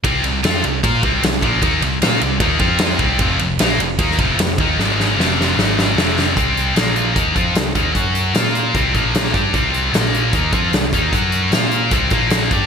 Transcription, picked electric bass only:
X:1
M:4/4
L:1/8
Q:1/4=152
K:F
V:1 name="Picked electric bass" clef=bass
C,, C,, F,, C,, B,, C,, C,, B,,, | _E,, C,, B,, C,, E,, F,,2 C,, | F,,, F,,, B,,, F,,, _E,, F,,, F,,, E,, | _A,,,2 F,,,2 A,,,2 F,,,2 |
C,,2 B,,,2 _E,, F,, C,, E,, | ^F,,2 B,,2 C,, B,,,2 G,, | C,,2 B,,,2 _E,, F,, C,, E,, | ^F,,2 B,,2 C,, B,,,2 G,, |]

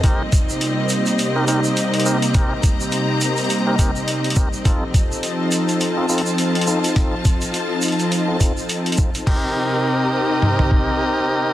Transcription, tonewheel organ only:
X:1
M:4/4
L:1/16
Q:"Swing 16ths" 1/4=104
K:Cdor
V:1 name="Tonewheel organ"
[CEGB] z8 [CEGB] [CEGB] z3 [CEGB] z | [CEGB] z8 [CEGB] [CEGB] z3 [CEGB] z | [CEFA] z8 [CEFA] [CEFA] z3 [CEFA] z | [CEFA] z8 [CEFA] [CEFA] z3 [CEFA] z |
[CEGB]16 |]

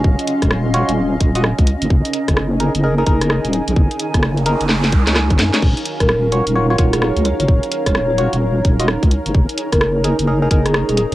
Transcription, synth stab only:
X:1
M:4/4
L:1/16
Q:"Swing 16ths" 1/4=129
K:Ebdor
V:1 name="Synth stab"
[FGd]6 [FGd] z4 [FGe] z4 | z6 [EAB] z [EAB] [EAB] [EAB]6- | [EAB]6 [EAB] z4 [EAd] z3 [EAd] | z6 [FGd] z [FGd] [FGd] [FGd]6- |
[FGd]6 [FGd] z4 [FGe] z4 | z6 [EAB] z [EAB] [EAB] [EAB]6 |]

